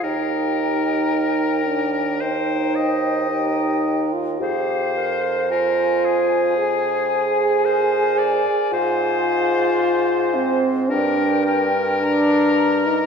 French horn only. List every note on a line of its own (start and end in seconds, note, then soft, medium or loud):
0.04 1.66 D#4 medium
1.66 2.23 D4 medium
2.21 3.29 D#4 medium
3.30 4.15 D#4 medium
4.13 4.42 F4 medium
4.41 5.22 G4 medium
5.51 6.54 F4 medium
6.58 8.69 G#4 medium
8.72 10.37 F4 medium
10.35 10.91 C4 medium
10.89 11.73 D4 medium
12.01 12.88 D4 loud
12.86 13.06 D#4 medium